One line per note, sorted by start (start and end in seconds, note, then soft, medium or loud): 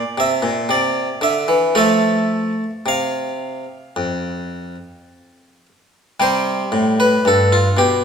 0.00 0.18 D5 medium
0.18 0.42 C3 medium
0.18 0.71 E5 medium
0.42 0.67 A#2 medium
0.69 1.07 C3 medium
0.69 1.23 D5 medium
1.21 1.47 D3 medium
1.21 1.68 E5 medium
1.48 1.74 E3 medium
1.75 2.52 F3 medium
1.75 2.63 A3 soft
1.75 2.63 A4 soft
1.75 2.70 E5 medium
2.86 3.64 C3 soft
2.86 5.66 F5 medium
3.96 4.75 F2 soft
6.20 6.62 C3 medium
6.20 8.04 G3 soft
6.20 6.88 C5 loud
6.72 7.15 A2 medium
7.00 7.26 B4 medium
7.25 7.67 G2 medium
7.25 7.53 A4 medium
7.53 7.78 F4 medium
7.77 8.04 B2 medium
7.77 8.04 G4 medium